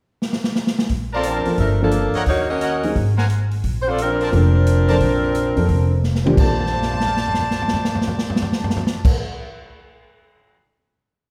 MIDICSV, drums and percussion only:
0, 0, Header, 1, 2, 480
1, 0, Start_track
1, 0, Key_signature, -2, "major"
1, 0, Tempo, 341686
1, 1257, Time_signature, 4, 2, 24, 8
1, 15880, End_track
2, 0, Start_track
2, 0, Title_t, "Drums"
2, 307, Note_on_c, 9, 38, 62
2, 447, Note_off_c, 9, 38, 0
2, 460, Note_on_c, 9, 38, 70
2, 600, Note_off_c, 9, 38, 0
2, 618, Note_on_c, 9, 38, 70
2, 758, Note_off_c, 9, 38, 0
2, 779, Note_on_c, 9, 38, 79
2, 920, Note_off_c, 9, 38, 0
2, 940, Note_on_c, 9, 38, 72
2, 1081, Note_off_c, 9, 38, 0
2, 1103, Note_on_c, 9, 38, 86
2, 1244, Note_off_c, 9, 38, 0
2, 1253, Note_on_c, 9, 46, 46
2, 1262, Note_on_c, 9, 36, 31
2, 1394, Note_off_c, 9, 46, 0
2, 1402, Note_off_c, 9, 36, 0
2, 1730, Note_on_c, 9, 42, 51
2, 1871, Note_off_c, 9, 42, 0
2, 2041, Note_on_c, 9, 46, 40
2, 2182, Note_off_c, 9, 46, 0
2, 2215, Note_on_c, 9, 46, 40
2, 2221, Note_on_c, 9, 36, 29
2, 2356, Note_off_c, 9, 46, 0
2, 2362, Note_off_c, 9, 36, 0
2, 2688, Note_on_c, 9, 42, 50
2, 2829, Note_off_c, 9, 42, 0
2, 3000, Note_on_c, 9, 46, 36
2, 3141, Note_off_c, 9, 46, 0
2, 3175, Note_on_c, 9, 46, 45
2, 3182, Note_on_c, 9, 36, 35
2, 3315, Note_off_c, 9, 46, 0
2, 3322, Note_off_c, 9, 36, 0
2, 3666, Note_on_c, 9, 42, 50
2, 3807, Note_off_c, 9, 42, 0
2, 3979, Note_on_c, 9, 46, 40
2, 4119, Note_off_c, 9, 46, 0
2, 4151, Note_on_c, 9, 36, 33
2, 4155, Note_on_c, 9, 46, 41
2, 4291, Note_off_c, 9, 36, 0
2, 4295, Note_off_c, 9, 46, 0
2, 4466, Note_on_c, 9, 38, 45
2, 4607, Note_off_c, 9, 38, 0
2, 4631, Note_on_c, 9, 42, 49
2, 4771, Note_off_c, 9, 42, 0
2, 4935, Note_on_c, 9, 46, 35
2, 5076, Note_off_c, 9, 46, 0
2, 5107, Note_on_c, 9, 46, 47
2, 5114, Note_on_c, 9, 36, 36
2, 5247, Note_off_c, 9, 46, 0
2, 5255, Note_off_c, 9, 36, 0
2, 5594, Note_on_c, 9, 42, 49
2, 5735, Note_off_c, 9, 42, 0
2, 5909, Note_on_c, 9, 46, 40
2, 6049, Note_off_c, 9, 46, 0
2, 6077, Note_on_c, 9, 36, 29
2, 6081, Note_on_c, 9, 46, 43
2, 6217, Note_off_c, 9, 36, 0
2, 6222, Note_off_c, 9, 46, 0
2, 6554, Note_on_c, 9, 42, 51
2, 6694, Note_off_c, 9, 42, 0
2, 6860, Note_on_c, 9, 46, 38
2, 7001, Note_off_c, 9, 46, 0
2, 7030, Note_on_c, 9, 46, 48
2, 7034, Note_on_c, 9, 36, 32
2, 7170, Note_off_c, 9, 46, 0
2, 7174, Note_off_c, 9, 36, 0
2, 7510, Note_on_c, 9, 42, 54
2, 7651, Note_off_c, 9, 42, 0
2, 7819, Note_on_c, 9, 46, 38
2, 7959, Note_off_c, 9, 46, 0
2, 7987, Note_on_c, 9, 46, 40
2, 7991, Note_on_c, 9, 36, 33
2, 8127, Note_off_c, 9, 46, 0
2, 8132, Note_off_c, 9, 36, 0
2, 8479, Note_on_c, 9, 38, 45
2, 8619, Note_off_c, 9, 38, 0
2, 8641, Note_on_c, 9, 38, 51
2, 8782, Note_off_c, 9, 38, 0
2, 8800, Note_on_c, 9, 47, 76
2, 8941, Note_off_c, 9, 47, 0
2, 8955, Note_on_c, 9, 36, 96
2, 8959, Note_on_c, 9, 49, 90
2, 9095, Note_off_c, 9, 36, 0
2, 9099, Note_off_c, 9, 49, 0
2, 9272, Note_on_c, 9, 43, 39
2, 9356, Note_on_c, 9, 38, 39
2, 9412, Note_off_c, 9, 43, 0
2, 9440, Note_on_c, 9, 43, 47
2, 9496, Note_off_c, 9, 38, 0
2, 9580, Note_off_c, 9, 43, 0
2, 9584, Note_on_c, 9, 38, 48
2, 9724, Note_off_c, 9, 38, 0
2, 9741, Note_on_c, 9, 43, 50
2, 9837, Note_on_c, 9, 38, 56
2, 9881, Note_off_c, 9, 43, 0
2, 9916, Note_on_c, 9, 43, 48
2, 9977, Note_off_c, 9, 38, 0
2, 10057, Note_off_c, 9, 43, 0
2, 10067, Note_on_c, 9, 38, 54
2, 10207, Note_off_c, 9, 38, 0
2, 10224, Note_on_c, 9, 43, 56
2, 10312, Note_on_c, 9, 38, 56
2, 10364, Note_off_c, 9, 43, 0
2, 10388, Note_on_c, 9, 43, 54
2, 10453, Note_off_c, 9, 38, 0
2, 10529, Note_off_c, 9, 43, 0
2, 10546, Note_on_c, 9, 38, 55
2, 10686, Note_off_c, 9, 38, 0
2, 10701, Note_on_c, 9, 43, 58
2, 10790, Note_on_c, 9, 38, 62
2, 10842, Note_off_c, 9, 43, 0
2, 10864, Note_on_c, 9, 43, 69
2, 10930, Note_off_c, 9, 38, 0
2, 11005, Note_off_c, 9, 43, 0
2, 11020, Note_on_c, 9, 38, 70
2, 11160, Note_off_c, 9, 38, 0
2, 11166, Note_on_c, 9, 43, 64
2, 11256, Note_on_c, 9, 38, 62
2, 11306, Note_off_c, 9, 43, 0
2, 11342, Note_on_c, 9, 43, 68
2, 11396, Note_off_c, 9, 38, 0
2, 11482, Note_off_c, 9, 43, 0
2, 11498, Note_on_c, 9, 38, 71
2, 11638, Note_off_c, 9, 38, 0
2, 11655, Note_on_c, 9, 43, 69
2, 11744, Note_on_c, 9, 38, 80
2, 11796, Note_off_c, 9, 43, 0
2, 11829, Note_on_c, 9, 43, 74
2, 11884, Note_off_c, 9, 38, 0
2, 11970, Note_off_c, 9, 43, 0
2, 11974, Note_on_c, 9, 38, 73
2, 12115, Note_off_c, 9, 38, 0
2, 12136, Note_on_c, 9, 43, 84
2, 12222, Note_on_c, 9, 38, 73
2, 12277, Note_off_c, 9, 43, 0
2, 12312, Note_on_c, 9, 43, 85
2, 12362, Note_off_c, 9, 38, 0
2, 12452, Note_off_c, 9, 43, 0
2, 12456, Note_on_c, 9, 38, 76
2, 12596, Note_off_c, 9, 38, 0
2, 12710, Note_on_c, 9, 36, 97
2, 12714, Note_on_c, 9, 49, 88
2, 12851, Note_off_c, 9, 36, 0
2, 12854, Note_off_c, 9, 49, 0
2, 15880, End_track
0, 0, End_of_file